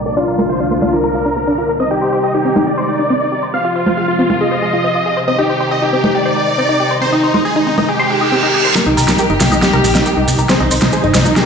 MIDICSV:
0, 0, Header, 1, 7, 480
1, 0, Start_track
1, 0, Key_signature, -3, "minor"
1, 0, Tempo, 434783
1, 65, Time_signature, 4, 2, 24, 8
1, 12647, End_track
2, 0, Start_track
2, 0, Title_t, "Supersaw synth"
2, 0, Program_c, 0, 81
2, 66, Note_on_c, 0, 74, 93
2, 170, Note_off_c, 0, 74, 0
2, 186, Note_on_c, 0, 65, 62
2, 290, Note_off_c, 0, 65, 0
2, 306, Note_on_c, 0, 65, 58
2, 410, Note_off_c, 0, 65, 0
2, 425, Note_on_c, 0, 65, 62
2, 530, Note_off_c, 0, 65, 0
2, 545, Note_on_c, 0, 72, 93
2, 650, Note_off_c, 0, 72, 0
2, 665, Note_on_c, 0, 65, 60
2, 770, Note_off_c, 0, 65, 0
2, 786, Note_on_c, 0, 65, 58
2, 890, Note_off_c, 0, 65, 0
2, 906, Note_on_c, 0, 65, 62
2, 1010, Note_off_c, 0, 65, 0
2, 1026, Note_on_c, 0, 70, 92
2, 1890, Note_off_c, 0, 70, 0
2, 1985, Note_on_c, 0, 75, 98
2, 2090, Note_off_c, 0, 75, 0
2, 2106, Note_on_c, 0, 67, 63
2, 2210, Note_off_c, 0, 67, 0
2, 2225, Note_on_c, 0, 67, 62
2, 2329, Note_off_c, 0, 67, 0
2, 2346, Note_on_c, 0, 67, 63
2, 2450, Note_off_c, 0, 67, 0
2, 2466, Note_on_c, 0, 75, 89
2, 2570, Note_off_c, 0, 75, 0
2, 2586, Note_on_c, 0, 67, 62
2, 2690, Note_off_c, 0, 67, 0
2, 2706, Note_on_c, 0, 67, 60
2, 2810, Note_off_c, 0, 67, 0
2, 2826, Note_on_c, 0, 67, 60
2, 2930, Note_off_c, 0, 67, 0
2, 2945, Note_on_c, 0, 74, 96
2, 3809, Note_off_c, 0, 74, 0
2, 3905, Note_on_c, 0, 77, 95
2, 4010, Note_off_c, 0, 77, 0
2, 4026, Note_on_c, 0, 65, 66
2, 4130, Note_off_c, 0, 65, 0
2, 4146, Note_on_c, 0, 65, 61
2, 4250, Note_off_c, 0, 65, 0
2, 4266, Note_on_c, 0, 65, 62
2, 4370, Note_off_c, 0, 65, 0
2, 4386, Note_on_c, 0, 77, 89
2, 4490, Note_off_c, 0, 77, 0
2, 4507, Note_on_c, 0, 65, 64
2, 4610, Note_off_c, 0, 65, 0
2, 4626, Note_on_c, 0, 65, 62
2, 4730, Note_off_c, 0, 65, 0
2, 4745, Note_on_c, 0, 65, 63
2, 4850, Note_off_c, 0, 65, 0
2, 4866, Note_on_c, 0, 75, 94
2, 5730, Note_off_c, 0, 75, 0
2, 5826, Note_on_c, 0, 75, 99
2, 5930, Note_off_c, 0, 75, 0
2, 5946, Note_on_c, 0, 67, 64
2, 6050, Note_off_c, 0, 67, 0
2, 6066, Note_on_c, 0, 67, 62
2, 6170, Note_off_c, 0, 67, 0
2, 6186, Note_on_c, 0, 67, 63
2, 6290, Note_off_c, 0, 67, 0
2, 6307, Note_on_c, 0, 75, 92
2, 6410, Note_off_c, 0, 75, 0
2, 6426, Note_on_c, 0, 67, 64
2, 6530, Note_off_c, 0, 67, 0
2, 6547, Note_on_c, 0, 67, 58
2, 6650, Note_off_c, 0, 67, 0
2, 6666, Note_on_c, 0, 67, 65
2, 6770, Note_off_c, 0, 67, 0
2, 6786, Note_on_c, 0, 74, 97
2, 7650, Note_off_c, 0, 74, 0
2, 7745, Note_on_c, 0, 72, 98
2, 7850, Note_off_c, 0, 72, 0
2, 7865, Note_on_c, 0, 63, 64
2, 7969, Note_off_c, 0, 63, 0
2, 7985, Note_on_c, 0, 63, 61
2, 8090, Note_off_c, 0, 63, 0
2, 8105, Note_on_c, 0, 63, 65
2, 8210, Note_off_c, 0, 63, 0
2, 8225, Note_on_c, 0, 68, 90
2, 8330, Note_off_c, 0, 68, 0
2, 8345, Note_on_c, 0, 63, 66
2, 8449, Note_off_c, 0, 63, 0
2, 8465, Note_on_c, 0, 63, 61
2, 8569, Note_off_c, 0, 63, 0
2, 8585, Note_on_c, 0, 63, 64
2, 8690, Note_off_c, 0, 63, 0
2, 8704, Note_on_c, 0, 67, 94
2, 9569, Note_off_c, 0, 67, 0
2, 9664, Note_on_c, 0, 67, 72
2, 9664, Note_on_c, 0, 70, 97
2, 9769, Note_off_c, 0, 67, 0
2, 9769, Note_off_c, 0, 70, 0
2, 9785, Note_on_c, 0, 63, 64
2, 9889, Note_off_c, 0, 63, 0
2, 9905, Note_on_c, 0, 63, 61
2, 10010, Note_off_c, 0, 63, 0
2, 10025, Note_on_c, 0, 63, 62
2, 10129, Note_off_c, 0, 63, 0
2, 10145, Note_on_c, 0, 67, 75
2, 10145, Note_on_c, 0, 70, 93
2, 10250, Note_off_c, 0, 67, 0
2, 10250, Note_off_c, 0, 70, 0
2, 10265, Note_on_c, 0, 63, 63
2, 10370, Note_off_c, 0, 63, 0
2, 10386, Note_on_c, 0, 63, 59
2, 10490, Note_off_c, 0, 63, 0
2, 10505, Note_on_c, 0, 63, 63
2, 10610, Note_off_c, 0, 63, 0
2, 10625, Note_on_c, 0, 63, 76
2, 10625, Note_on_c, 0, 67, 95
2, 11489, Note_off_c, 0, 63, 0
2, 11489, Note_off_c, 0, 67, 0
2, 11586, Note_on_c, 0, 68, 72
2, 11586, Note_on_c, 0, 72, 95
2, 11690, Note_off_c, 0, 68, 0
2, 11690, Note_off_c, 0, 72, 0
2, 11706, Note_on_c, 0, 63, 64
2, 11810, Note_off_c, 0, 63, 0
2, 11825, Note_on_c, 0, 63, 63
2, 11930, Note_off_c, 0, 63, 0
2, 11945, Note_on_c, 0, 63, 61
2, 12050, Note_off_c, 0, 63, 0
2, 12065, Note_on_c, 0, 68, 76
2, 12065, Note_on_c, 0, 72, 91
2, 12169, Note_off_c, 0, 68, 0
2, 12169, Note_off_c, 0, 72, 0
2, 12185, Note_on_c, 0, 63, 66
2, 12289, Note_off_c, 0, 63, 0
2, 12305, Note_on_c, 0, 63, 62
2, 12410, Note_off_c, 0, 63, 0
2, 12425, Note_on_c, 0, 63, 64
2, 12530, Note_off_c, 0, 63, 0
2, 12544, Note_on_c, 0, 67, 81
2, 12545, Note_on_c, 0, 70, 96
2, 12647, Note_off_c, 0, 67, 0
2, 12647, Note_off_c, 0, 70, 0
2, 12647, End_track
3, 0, Start_track
3, 0, Title_t, "Synth arpeggio sound"
3, 0, Program_c, 1, 84
3, 66, Note_on_c, 1, 58, 78
3, 110, Note_off_c, 1, 58, 0
3, 185, Note_on_c, 1, 62, 100
3, 212, Note_off_c, 1, 62, 0
3, 306, Note_on_c, 1, 70, 78
3, 350, Note_off_c, 1, 70, 0
3, 426, Note_on_c, 1, 70, 75
3, 452, Note_off_c, 1, 70, 0
3, 546, Note_on_c, 1, 65, 79
3, 572, Note_off_c, 1, 65, 0
3, 666, Note_on_c, 1, 62, 78
3, 710, Note_off_c, 1, 62, 0
3, 786, Note_on_c, 1, 58, 79
3, 812, Note_off_c, 1, 58, 0
3, 906, Note_on_c, 1, 62, 96
3, 950, Note_off_c, 1, 62, 0
3, 1026, Note_on_c, 1, 65, 76
3, 1070, Note_off_c, 1, 65, 0
3, 1146, Note_on_c, 1, 70, 96
3, 1172, Note_off_c, 1, 70, 0
3, 1265, Note_on_c, 1, 65, 73
3, 1310, Note_off_c, 1, 65, 0
3, 1385, Note_on_c, 1, 62, 79
3, 1412, Note_off_c, 1, 62, 0
3, 1506, Note_on_c, 1, 58, 81
3, 1532, Note_off_c, 1, 58, 0
3, 1626, Note_on_c, 1, 62, 78
3, 1670, Note_off_c, 1, 62, 0
3, 1746, Note_on_c, 1, 65, 72
3, 1772, Note_off_c, 1, 65, 0
3, 1866, Note_on_c, 1, 70, 72
3, 1892, Note_off_c, 1, 70, 0
3, 1986, Note_on_c, 1, 60, 82
3, 2030, Note_off_c, 1, 60, 0
3, 2105, Note_on_c, 1, 63, 96
3, 2132, Note_off_c, 1, 63, 0
3, 2225, Note_on_c, 1, 72, 76
3, 2270, Note_off_c, 1, 72, 0
3, 2345, Note_on_c, 1, 72, 74
3, 2372, Note_off_c, 1, 72, 0
3, 2465, Note_on_c, 1, 67, 75
3, 2492, Note_off_c, 1, 67, 0
3, 2585, Note_on_c, 1, 63, 74
3, 2629, Note_off_c, 1, 63, 0
3, 2704, Note_on_c, 1, 60, 74
3, 2732, Note_off_c, 1, 60, 0
3, 2824, Note_on_c, 1, 63, 96
3, 2869, Note_off_c, 1, 63, 0
3, 2944, Note_on_c, 1, 67, 83
3, 2989, Note_off_c, 1, 67, 0
3, 3064, Note_on_c, 1, 72, 101
3, 3092, Note_off_c, 1, 72, 0
3, 3184, Note_on_c, 1, 67, 74
3, 3229, Note_off_c, 1, 67, 0
3, 3305, Note_on_c, 1, 63, 77
3, 3332, Note_off_c, 1, 63, 0
3, 3424, Note_on_c, 1, 60, 81
3, 3452, Note_off_c, 1, 60, 0
3, 3545, Note_on_c, 1, 63, 78
3, 3589, Note_off_c, 1, 63, 0
3, 3664, Note_on_c, 1, 67, 74
3, 3692, Note_off_c, 1, 67, 0
3, 3784, Note_on_c, 1, 72, 73
3, 3812, Note_off_c, 1, 72, 0
3, 3905, Note_on_c, 1, 60, 78
3, 3949, Note_off_c, 1, 60, 0
3, 4024, Note_on_c, 1, 65, 96
3, 4052, Note_off_c, 1, 65, 0
3, 4145, Note_on_c, 1, 72, 73
3, 4189, Note_off_c, 1, 72, 0
3, 4265, Note_on_c, 1, 72, 76
3, 4292, Note_off_c, 1, 72, 0
3, 4385, Note_on_c, 1, 68, 74
3, 4412, Note_off_c, 1, 68, 0
3, 4505, Note_on_c, 1, 65, 70
3, 4549, Note_off_c, 1, 65, 0
3, 4625, Note_on_c, 1, 60, 79
3, 4652, Note_off_c, 1, 60, 0
3, 4745, Note_on_c, 1, 65, 99
3, 4790, Note_off_c, 1, 65, 0
3, 4865, Note_on_c, 1, 68, 79
3, 4910, Note_off_c, 1, 68, 0
3, 4985, Note_on_c, 1, 72, 104
3, 5012, Note_off_c, 1, 72, 0
3, 5105, Note_on_c, 1, 68, 74
3, 5150, Note_off_c, 1, 68, 0
3, 5225, Note_on_c, 1, 65, 76
3, 5252, Note_off_c, 1, 65, 0
3, 5346, Note_on_c, 1, 60, 82
3, 5372, Note_off_c, 1, 60, 0
3, 5466, Note_on_c, 1, 65, 76
3, 5510, Note_off_c, 1, 65, 0
3, 5586, Note_on_c, 1, 68, 74
3, 5612, Note_off_c, 1, 68, 0
3, 5706, Note_on_c, 1, 72, 78
3, 5732, Note_off_c, 1, 72, 0
3, 5826, Note_on_c, 1, 60, 80
3, 5870, Note_off_c, 1, 60, 0
3, 5945, Note_on_c, 1, 63, 104
3, 5972, Note_off_c, 1, 63, 0
3, 6065, Note_on_c, 1, 72, 77
3, 6110, Note_off_c, 1, 72, 0
3, 6186, Note_on_c, 1, 72, 73
3, 6212, Note_off_c, 1, 72, 0
3, 6305, Note_on_c, 1, 67, 78
3, 6332, Note_off_c, 1, 67, 0
3, 6426, Note_on_c, 1, 63, 76
3, 6470, Note_off_c, 1, 63, 0
3, 6546, Note_on_c, 1, 60, 78
3, 6572, Note_off_c, 1, 60, 0
3, 6666, Note_on_c, 1, 63, 97
3, 6710, Note_off_c, 1, 63, 0
3, 6786, Note_on_c, 1, 67, 81
3, 6830, Note_off_c, 1, 67, 0
3, 6906, Note_on_c, 1, 72, 100
3, 6932, Note_off_c, 1, 72, 0
3, 7026, Note_on_c, 1, 67, 76
3, 7070, Note_off_c, 1, 67, 0
3, 7146, Note_on_c, 1, 63, 76
3, 7172, Note_off_c, 1, 63, 0
3, 7266, Note_on_c, 1, 60, 77
3, 7292, Note_off_c, 1, 60, 0
3, 7386, Note_on_c, 1, 63, 79
3, 7430, Note_off_c, 1, 63, 0
3, 7506, Note_on_c, 1, 67, 74
3, 7532, Note_off_c, 1, 67, 0
3, 7626, Note_on_c, 1, 72, 74
3, 7652, Note_off_c, 1, 72, 0
3, 7746, Note_on_c, 1, 60, 83
3, 7790, Note_off_c, 1, 60, 0
3, 7866, Note_on_c, 1, 63, 101
3, 7892, Note_off_c, 1, 63, 0
3, 7986, Note_on_c, 1, 72, 73
3, 8030, Note_off_c, 1, 72, 0
3, 8106, Note_on_c, 1, 72, 71
3, 8132, Note_off_c, 1, 72, 0
3, 8226, Note_on_c, 1, 68, 80
3, 8252, Note_off_c, 1, 68, 0
3, 8346, Note_on_c, 1, 63, 75
3, 8390, Note_off_c, 1, 63, 0
3, 8465, Note_on_c, 1, 60, 76
3, 8492, Note_off_c, 1, 60, 0
3, 8585, Note_on_c, 1, 63, 99
3, 8630, Note_off_c, 1, 63, 0
3, 8705, Note_on_c, 1, 68, 81
3, 8750, Note_off_c, 1, 68, 0
3, 8825, Note_on_c, 1, 72, 101
3, 8852, Note_off_c, 1, 72, 0
3, 8945, Note_on_c, 1, 68, 71
3, 8990, Note_off_c, 1, 68, 0
3, 9065, Note_on_c, 1, 63, 73
3, 9092, Note_off_c, 1, 63, 0
3, 9185, Note_on_c, 1, 60, 80
3, 9212, Note_off_c, 1, 60, 0
3, 9305, Note_on_c, 1, 63, 79
3, 9350, Note_off_c, 1, 63, 0
3, 9425, Note_on_c, 1, 68, 76
3, 9452, Note_off_c, 1, 68, 0
3, 9545, Note_on_c, 1, 72, 73
3, 9572, Note_off_c, 1, 72, 0
3, 9666, Note_on_c, 1, 58, 80
3, 9710, Note_off_c, 1, 58, 0
3, 9786, Note_on_c, 1, 63, 95
3, 9812, Note_off_c, 1, 63, 0
3, 9906, Note_on_c, 1, 70, 75
3, 9950, Note_off_c, 1, 70, 0
3, 10026, Note_on_c, 1, 70, 72
3, 10052, Note_off_c, 1, 70, 0
3, 10146, Note_on_c, 1, 67, 76
3, 10172, Note_off_c, 1, 67, 0
3, 10266, Note_on_c, 1, 63, 76
3, 10310, Note_off_c, 1, 63, 0
3, 10386, Note_on_c, 1, 58, 78
3, 10412, Note_off_c, 1, 58, 0
3, 10506, Note_on_c, 1, 63, 96
3, 10550, Note_off_c, 1, 63, 0
3, 10626, Note_on_c, 1, 67, 79
3, 10670, Note_off_c, 1, 67, 0
3, 10746, Note_on_c, 1, 70, 102
3, 10772, Note_off_c, 1, 70, 0
3, 10866, Note_on_c, 1, 67, 74
3, 10910, Note_off_c, 1, 67, 0
3, 10986, Note_on_c, 1, 63, 82
3, 11012, Note_off_c, 1, 63, 0
3, 11106, Note_on_c, 1, 58, 87
3, 11132, Note_off_c, 1, 58, 0
3, 11226, Note_on_c, 1, 63, 81
3, 11270, Note_off_c, 1, 63, 0
3, 11345, Note_on_c, 1, 67, 73
3, 11372, Note_off_c, 1, 67, 0
3, 11465, Note_on_c, 1, 70, 73
3, 11492, Note_off_c, 1, 70, 0
3, 11585, Note_on_c, 1, 60, 81
3, 11630, Note_off_c, 1, 60, 0
3, 11705, Note_on_c, 1, 63, 105
3, 11732, Note_off_c, 1, 63, 0
3, 11825, Note_on_c, 1, 72, 72
3, 11870, Note_off_c, 1, 72, 0
3, 11945, Note_on_c, 1, 72, 76
3, 11972, Note_off_c, 1, 72, 0
3, 12065, Note_on_c, 1, 68, 76
3, 12092, Note_off_c, 1, 68, 0
3, 12186, Note_on_c, 1, 63, 72
3, 12230, Note_off_c, 1, 63, 0
3, 12305, Note_on_c, 1, 60, 78
3, 12332, Note_off_c, 1, 60, 0
3, 12425, Note_on_c, 1, 63, 104
3, 12470, Note_off_c, 1, 63, 0
3, 12546, Note_on_c, 1, 68, 83
3, 12590, Note_off_c, 1, 68, 0
3, 12647, End_track
4, 0, Start_track
4, 0, Title_t, "String section"
4, 0, Program_c, 2, 48
4, 0, Note_on_c, 2, 36, 75
4, 0, Note_on_c, 2, 46, 71
4, 65, Note_on_c, 2, 50, 70
4, 65, Note_on_c, 2, 53, 68
4, 65, Note_on_c, 2, 62, 87
4, 1947, Note_off_c, 2, 36, 0
4, 1947, Note_off_c, 2, 46, 0
4, 1966, Note_off_c, 2, 50, 0
4, 1966, Note_off_c, 2, 53, 0
4, 1966, Note_off_c, 2, 62, 0
4, 1985, Note_on_c, 2, 48, 79
4, 1985, Note_on_c, 2, 51, 70
4, 1985, Note_on_c, 2, 55, 69
4, 1985, Note_on_c, 2, 63, 86
4, 3886, Note_off_c, 2, 51, 0
4, 3886, Note_off_c, 2, 55, 0
4, 3886, Note_off_c, 2, 63, 0
4, 3905, Note_on_c, 2, 53, 68
4, 3905, Note_on_c, 2, 56, 71
4, 3905, Note_on_c, 2, 65, 87
4, 5806, Note_off_c, 2, 53, 0
4, 5806, Note_off_c, 2, 56, 0
4, 5806, Note_off_c, 2, 65, 0
4, 5825, Note_on_c, 2, 55, 75
4, 5826, Note_on_c, 2, 51, 73
4, 5826, Note_on_c, 2, 63, 85
4, 7726, Note_off_c, 2, 55, 0
4, 7746, Note_on_c, 2, 56, 72
4, 9621, Note_off_c, 2, 48, 0
4, 9627, Note_off_c, 2, 51, 0
4, 9627, Note_off_c, 2, 63, 0
4, 9646, Note_off_c, 2, 56, 0
4, 9665, Note_on_c, 2, 51, 80
4, 9665, Note_on_c, 2, 55, 70
4, 9665, Note_on_c, 2, 58, 70
4, 9665, Note_on_c, 2, 67, 90
4, 11566, Note_off_c, 2, 55, 0
4, 11566, Note_off_c, 2, 58, 0
4, 11566, Note_off_c, 2, 67, 0
4, 11585, Note_on_c, 2, 48, 78
4, 11585, Note_on_c, 2, 56, 73
4, 11585, Note_on_c, 2, 63, 85
4, 12647, Note_off_c, 2, 48, 0
4, 12647, Note_off_c, 2, 51, 0
4, 12647, Note_off_c, 2, 56, 0
4, 12647, Note_off_c, 2, 63, 0
4, 12647, End_track
5, 0, Start_track
5, 0, Title_t, "Analog synth bass"
5, 0, Program_c, 3, 38
5, 9786, Note_on_c, 3, 36, 86
5, 9886, Note_off_c, 3, 36, 0
5, 9906, Note_on_c, 3, 36, 92
5, 10006, Note_off_c, 3, 36, 0
5, 10026, Note_on_c, 3, 36, 84
5, 10126, Note_off_c, 3, 36, 0
5, 10266, Note_on_c, 3, 31, 90
5, 10366, Note_off_c, 3, 31, 0
5, 10386, Note_on_c, 3, 36, 100
5, 10486, Note_off_c, 3, 36, 0
5, 10506, Note_on_c, 3, 36, 93
5, 10606, Note_off_c, 3, 36, 0
5, 10746, Note_on_c, 3, 36, 87
5, 10846, Note_off_c, 3, 36, 0
5, 10866, Note_on_c, 3, 34, 94
5, 10966, Note_off_c, 3, 34, 0
5, 10986, Note_on_c, 3, 36, 91
5, 11086, Note_off_c, 3, 36, 0
5, 11226, Note_on_c, 3, 36, 89
5, 11327, Note_off_c, 3, 36, 0
5, 11346, Note_on_c, 3, 36, 94
5, 11447, Note_off_c, 3, 36, 0
5, 11465, Note_on_c, 3, 36, 91
5, 11566, Note_off_c, 3, 36, 0
5, 11706, Note_on_c, 3, 36, 87
5, 11806, Note_off_c, 3, 36, 0
5, 11826, Note_on_c, 3, 36, 100
5, 11926, Note_off_c, 3, 36, 0
5, 11945, Note_on_c, 3, 36, 91
5, 12046, Note_off_c, 3, 36, 0
5, 12185, Note_on_c, 3, 31, 90
5, 12286, Note_off_c, 3, 31, 0
5, 12305, Note_on_c, 3, 36, 101
5, 12406, Note_off_c, 3, 36, 0
5, 12426, Note_on_c, 3, 36, 92
5, 12527, Note_off_c, 3, 36, 0
5, 12647, End_track
6, 0, Start_track
6, 0, Title_t, "Reverse cymbal"
6, 0, Program_c, 4, 119
6, 8705, Note_on_c, 4, 60, 78
6, 9666, Note_off_c, 4, 60, 0
6, 12647, End_track
7, 0, Start_track
7, 0, Title_t, "Drums"
7, 426, Note_on_c, 9, 63, 65
7, 536, Note_off_c, 9, 63, 0
7, 905, Note_on_c, 9, 63, 78
7, 1016, Note_off_c, 9, 63, 0
7, 2825, Note_on_c, 9, 63, 79
7, 2936, Note_off_c, 9, 63, 0
7, 4266, Note_on_c, 9, 63, 61
7, 4376, Note_off_c, 9, 63, 0
7, 4746, Note_on_c, 9, 63, 83
7, 4856, Note_off_c, 9, 63, 0
7, 6666, Note_on_c, 9, 63, 78
7, 6776, Note_off_c, 9, 63, 0
7, 8106, Note_on_c, 9, 63, 61
7, 8216, Note_off_c, 9, 63, 0
7, 8586, Note_on_c, 9, 63, 75
7, 8696, Note_off_c, 9, 63, 0
7, 9666, Note_on_c, 9, 38, 44
7, 9666, Note_on_c, 9, 42, 91
7, 9669, Note_on_c, 9, 70, 35
7, 9776, Note_off_c, 9, 38, 0
7, 9776, Note_off_c, 9, 42, 0
7, 9779, Note_off_c, 9, 70, 0
7, 9786, Note_on_c, 9, 42, 37
7, 9896, Note_off_c, 9, 42, 0
7, 9906, Note_on_c, 9, 46, 98
7, 9912, Note_on_c, 9, 70, 89
7, 10016, Note_off_c, 9, 46, 0
7, 10022, Note_off_c, 9, 70, 0
7, 10024, Note_on_c, 9, 70, 48
7, 10026, Note_on_c, 9, 38, 44
7, 10135, Note_off_c, 9, 70, 0
7, 10136, Note_off_c, 9, 38, 0
7, 10137, Note_on_c, 9, 70, 37
7, 10145, Note_on_c, 9, 42, 90
7, 10248, Note_off_c, 9, 70, 0
7, 10256, Note_off_c, 9, 42, 0
7, 10266, Note_on_c, 9, 42, 41
7, 10376, Note_off_c, 9, 42, 0
7, 10378, Note_on_c, 9, 70, 101
7, 10386, Note_on_c, 9, 38, 51
7, 10386, Note_on_c, 9, 46, 108
7, 10489, Note_off_c, 9, 70, 0
7, 10496, Note_off_c, 9, 38, 0
7, 10496, Note_off_c, 9, 46, 0
7, 10506, Note_on_c, 9, 42, 39
7, 10506, Note_on_c, 9, 63, 73
7, 10508, Note_on_c, 9, 70, 53
7, 10616, Note_off_c, 9, 42, 0
7, 10616, Note_off_c, 9, 63, 0
7, 10619, Note_off_c, 9, 70, 0
7, 10625, Note_on_c, 9, 38, 49
7, 10625, Note_on_c, 9, 42, 91
7, 10631, Note_on_c, 9, 70, 39
7, 10736, Note_off_c, 9, 38, 0
7, 10736, Note_off_c, 9, 42, 0
7, 10742, Note_off_c, 9, 70, 0
7, 10746, Note_on_c, 9, 42, 41
7, 10856, Note_off_c, 9, 42, 0
7, 10866, Note_on_c, 9, 46, 102
7, 10867, Note_on_c, 9, 70, 87
7, 10976, Note_off_c, 9, 46, 0
7, 10978, Note_off_c, 9, 70, 0
7, 10983, Note_on_c, 9, 70, 57
7, 10986, Note_on_c, 9, 38, 41
7, 11093, Note_off_c, 9, 70, 0
7, 11096, Note_off_c, 9, 38, 0
7, 11105, Note_on_c, 9, 42, 91
7, 11115, Note_on_c, 9, 70, 35
7, 11216, Note_off_c, 9, 42, 0
7, 11225, Note_off_c, 9, 70, 0
7, 11346, Note_on_c, 9, 46, 109
7, 11349, Note_on_c, 9, 70, 94
7, 11456, Note_off_c, 9, 46, 0
7, 11460, Note_off_c, 9, 70, 0
7, 11466, Note_on_c, 9, 70, 45
7, 11577, Note_off_c, 9, 70, 0
7, 11585, Note_on_c, 9, 38, 49
7, 11585, Note_on_c, 9, 42, 89
7, 11585, Note_on_c, 9, 70, 36
7, 11695, Note_off_c, 9, 70, 0
7, 11696, Note_off_c, 9, 38, 0
7, 11696, Note_off_c, 9, 42, 0
7, 11706, Note_on_c, 9, 42, 38
7, 11816, Note_off_c, 9, 42, 0
7, 11822, Note_on_c, 9, 70, 92
7, 11826, Note_on_c, 9, 46, 105
7, 11932, Note_off_c, 9, 70, 0
7, 11936, Note_off_c, 9, 46, 0
7, 11936, Note_on_c, 9, 70, 51
7, 11946, Note_on_c, 9, 38, 49
7, 11946, Note_on_c, 9, 63, 60
7, 12046, Note_off_c, 9, 70, 0
7, 12056, Note_off_c, 9, 38, 0
7, 12056, Note_off_c, 9, 63, 0
7, 12061, Note_on_c, 9, 70, 36
7, 12065, Note_on_c, 9, 42, 87
7, 12172, Note_off_c, 9, 70, 0
7, 12176, Note_off_c, 9, 42, 0
7, 12185, Note_on_c, 9, 42, 37
7, 12296, Note_off_c, 9, 42, 0
7, 12300, Note_on_c, 9, 70, 96
7, 12305, Note_on_c, 9, 38, 59
7, 12305, Note_on_c, 9, 46, 113
7, 12410, Note_off_c, 9, 70, 0
7, 12416, Note_off_c, 9, 38, 0
7, 12416, Note_off_c, 9, 46, 0
7, 12426, Note_on_c, 9, 63, 73
7, 12426, Note_on_c, 9, 70, 59
7, 12536, Note_off_c, 9, 63, 0
7, 12537, Note_off_c, 9, 70, 0
7, 12546, Note_on_c, 9, 38, 57
7, 12546, Note_on_c, 9, 42, 90
7, 12552, Note_on_c, 9, 70, 37
7, 12647, Note_off_c, 9, 38, 0
7, 12647, Note_off_c, 9, 42, 0
7, 12647, Note_off_c, 9, 70, 0
7, 12647, End_track
0, 0, End_of_file